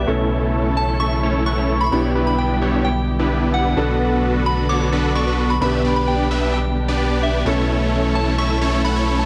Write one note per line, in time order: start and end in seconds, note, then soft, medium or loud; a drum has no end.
0.00 0.80 E5 medium
0.07 1.90 B1 medium
0.07 1.89 B2 medium
0.07 1.90 C#3 medium
0.07 1.90 E3 medium
0.07 1.89 A3 medium
0.07 0.97 A3 medium
0.07 1.90 A3 medium
0.07 0.97 C#4 medium
0.07 1.89 C#4 medium
0.07 0.97 E4 medium
0.07 3.73 E4 medium
0.07 1.90 E4 medium
0.07 0.97 A4 medium
0.07 1.90 A4 medium
0.07 0.97 C#5 medium
0.07 closed hi-hat medium
0.19 closed hi-hat soft
0.31 closed hi-hat medium
0.42 closed hi-hat soft
0.54 closed hi-hat medium
0.65 closed hi-hat soft
0.77 1.01 A5 medium
0.77 closed hi-hat soft
0.88 closed hi-hat soft
1.00 1.20 A3 medium
1.00 1.20 C#4 medium
1.00 1.20 E4 medium
1.00 1.20 A4 medium
1.00 1.20 E5 medium
1.00 1.45 C#6 loud
1.00 closed hi-hat medium
1.11 closed hi-hat soft
1.23 1.43 A3 loud
1.23 1.43 C#4 medium
1.23 1.43 E4 medium
1.23 1.43 A4 medium
1.23 1.43 C#5 loud
1.23 closed hi-hat medium
1.46 1.56 A3 medium
1.46 1.56 C#4 medium
1.46 1.56 E4 medium
1.46 1.56 A4 medium
1.46 1.56 F#5 medium
1.46 1.78 C#6 loud
1.46 closed hi-hat medium
1.58 1.85 A3 medium
1.58 1.85 C#4 medium
1.58 1.85 E4 medium
1.58 1.85 A4 medium
1.58 1.85 C#5 medium
1.69 closed hi-hat medium
1.81 1.84 B5 medium
1.81 1.86 C#6 medium
1.86 1.91 B5 medium
1.91 3.75 B1 medium
1.91 3.73 B2 medium
1.91 7.42 D3 medium
1.91 3.75 G3 medium
1.91 3.74 B3 medium
1.91 2.13 B3 medium
1.91 5.58 B3 medium
1.91 3.74 D4 medium
1.91 2.13 D4 medium
1.91 2.13 E4 medium
1.91 3.74 E4 medium
1.91 3.75 G4 medium
1.91 2.13 G4 medium
1.91 3.75 G4 medium
1.91 2.13 C#5 medium
1.91 2.26 B5 loud
1.91 closed hi-hat medium
2.04 closed hi-hat soft
2.15 2.59 B3 medium
2.15 2.59 D4 medium
2.15 2.59 E4 medium
2.15 2.59 G4 medium
2.15 2.59 B4 medium
2.15 closed hi-hat medium
2.27 2.32 B5 medium
2.27 closed hi-hat soft
2.38 2.81 G5 medium
2.38 closed hi-hat medium
2.50 closed hi-hat soft
2.61 2.89 B3 loud
2.61 2.89 D4 medium
2.61 2.89 E4 medium
2.61 2.89 G4 medium
2.61 2.89 C#5 loud
2.85 3.50 G5 medium
2.85 closed hi-hat medium
2.96 closed hi-hat soft
3.08 closed hi-hat medium
3.19 3.74 B3 medium
3.19 3.74 D4 medium
3.19 3.74 E4 medium
3.19 3.74 G4 medium
3.19 3.74 B4 loud
3.19 closed hi-hat soft
3.31 closed hi-hat medium
3.42 closed hi-hat soft
3.54 4.42 F#5 medium
3.54 closed hi-hat medium
3.65 closed hi-hat soft
3.76 5.59 B1 medium
3.76 5.58 B2 medium
3.76 5.60 F#3 medium
3.76 5.60 A3 medium
3.76 5.58 B3 medium
3.76 4.66 B3 medium
3.76 4.66 D4 medium
3.76 5.59 D4 medium
3.76 4.66 F#4 medium
3.76 5.60 F#4 medium
3.76 5.59 F#4 medium
3.76 4.66 A4 medium
3.76 5.59 A4 medium
3.76 4.66 B4 medium
3.76 closed hi-hat medium
4.00 closed hi-hat medium
4.11 closed hi-hat soft
4.23 closed hi-hat medium
4.46 4.68 B5 medium
4.58 closed hi-hat soft
4.69 4.89 B3 medium
4.69 4.89 D4 medium
4.69 4.89 F#4 medium
4.69 4.89 A4 medium
4.69 4.89 C#5 medium
4.69 5.12 D6 loud
4.69 closed hi-hat medium
4.92 5.13 B3 medium
4.92 5.13 D4 medium
4.92 5.13 F#4 medium
4.92 5.13 A4 medium
4.92 5.13 B4 loud
4.92 closed hi-hat medium
5.15 5.25 B3 medium
5.15 5.25 D4 medium
5.15 5.25 F#4 medium
5.15 5.25 A4 medium
5.15 5.25 D5 medium
5.15 5.51 C#6 medium
5.15 closed hi-hat medium
5.27 5.54 B3 medium
5.27 5.54 D4 medium
5.27 5.54 F#4 medium
5.27 5.54 A4 medium
5.27 5.54 B4 medium
5.50 5.60 B5 medium
5.50 closed hi-hat soft
5.60 7.44 B1 medium
5.60 7.43 B2 medium
5.60 7.44 B2 medium
5.60 7.44 G3 medium
5.60 7.43 B3 medium
5.60 5.82 B3 medium
5.60 7.44 D4 medium
5.60 7.43 D4 medium
5.60 5.82 D4 medium
5.60 7.44 G4 medium
5.60 5.82 G4 medium
5.60 7.44 G4 medium
5.60 5.82 B4 medium
5.60 7.44 B4 medium
5.60 5.82 E5 medium
5.60 5.95 B5 loud
5.60 closed hi-hat medium
5.73 closed hi-hat soft
5.85 6.28 B3 medium
5.85 6.28 D4 medium
5.85 6.28 G4 medium
5.85 6.28 B4 medium
5.85 6.28 D5 medium
5.85 closed hi-hat medium
5.96 6.07 B5 medium
5.96 closed hi-hat soft
6.08 6.53 G5 medium
6.08 closed hi-hat medium
6.19 closed hi-hat soft
6.31 6.58 B3 loud
6.31 6.58 D4 medium
6.31 6.58 G4 medium
6.31 6.58 B4 medium
6.31 6.58 E5 loud
6.31 closed hi-hat soft
6.42 closed hi-hat soft
6.54 7.25 G5 medium
6.54 closed hi-hat medium
6.65 closed hi-hat soft
6.77 closed hi-hat medium
6.88 7.43 B3 medium
6.88 7.43 D4 medium
6.88 7.43 G4 medium
6.88 7.43 B4 medium
6.88 7.43 D5 loud
6.88 closed hi-hat soft
7.00 closed hi-hat medium
7.11 closed hi-hat soft
7.23 8.18 E5 medium
7.23 closed hi-hat medium
7.34 closed hi-hat soft
7.45 9.26 B1 medium
7.45 9.26 B2 medium
7.45 9.26 C#3 medium
7.45 9.26 E3 medium
7.45 9.26 A3 medium
7.45 8.36 A3 medium
7.45 8.36 C#4 medium
7.45 9.26 C#4 medium
7.45 9.26 E4 medium
7.45 8.36 E4 medium
7.45 9.26 E4 medium
7.45 9.26 A4 medium
7.45 8.36 A4 medium
7.45 9.26 A4 medium
7.45 8.36 C#5 medium
7.45 closed hi-hat medium
7.58 closed hi-hat soft
7.69 closed hi-hat medium
7.81 closed hi-hat soft
7.92 closed hi-hat medium
8.04 closed hi-hat soft
8.15 8.26 A5 medium
8.15 closed hi-hat soft
8.27 closed hi-hat soft
8.38 8.59 A3 medium
8.38 8.59 C#4 medium
8.38 8.59 E4 medium
8.38 8.59 A4 medium
8.38 8.59 E5 medium
8.38 8.86 C#6 loud
8.38 closed hi-hat medium
8.50 closed hi-hat soft
8.61 8.82 A3 loud
8.61 8.82 C#4 medium
8.61 8.82 E4 medium
8.61 8.82 A4 medium
8.61 8.82 C#5 loud
8.61 closed hi-hat medium
8.73 closed hi-hat soft
8.84 8.94 A3 medium
8.84 8.94 C#4 medium
8.84 8.94 E4 medium
8.84 8.94 A4 medium
8.84 8.94 F#5 medium
8.84 9.20 B5 medium
8.84 closed hi-hat medium
8.96 9.23 A3 medium
8.96 9.23 C#4 medium
8.96 9.23 E4 medium
8.96 9.23 A4 medium
8.96 9.23 C#5 medium
9.08 closed hi-hat medium
9.19 9.26 A5 medium
9.19 closed hi-hat soft